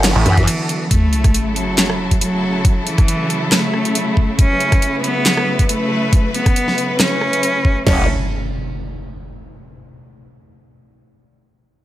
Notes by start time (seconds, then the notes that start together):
Already playing: F#1 D3 F#3 B3 F#4 A4
0.04 E3, cross-stick, snare, clap, closed hi-hat, crash
0.16 A1
0.26 F#2, cross-stick, closed hi-hat
0.37 kick, closed hi-hat
0.48 closed hi-hat, crash
0.69 closed hi-hat
0.91 C#3 F#3 A3 E4 A4, kick, closed hi-hat, sub drop
1.13 closed hi-hat
1.24 kick, cross-stick, closed hi-hat
1.34 closed hi-hat
1.56 F#3, closed hi-hat
1.78 snare, clap, closed hi-hat
1.90 cross-stick
2.11 kick, closed hi-hat
2.21 F#3, closed hi-hat
2.65 kick, closed hi-hat
2.87 E3, closed hi-hat
2.98 kick, cross-stick, closed hi-hat
3.08 closed hi-hat
3.30 closed hi-hat
3.52 A3, cross-stick, snare, clap, closed hi-hat
3.74 cross-stick
3.85 closed hi-hat
3.95 closed hi-hat
4.17 kick
4.39 C#4 B4, kick, closed hi-hat
4.60 closed hi-hat
4.72 kick, cross-stick, closed hi-hat
4.82 closed hi-hat
5.04 B3, closed hi-hat
5.26 snare, clap, closed hi-hat
5.37 cross-stick
5.59 kick, closed hi-hat
5.69 A3, closed hi-hat
6.13 kick, closed hi-hat
6.34 B3, closed hi-hat
6.46 kick, cross-stick, closed hi-hat
6.56 closed hi-hat
6.68 snare
6.78 closed hi-hat
7.00 C#4, cross-stick, snare, clap, closed hi-hat
7.21 cross-stick
7.33 closed hi-hat
7.43 closed hi-hat
7.65 kick
7.87 F#1 C#3 F#3 A3 C#4 E4 A4, snare, floor tom, crash, impact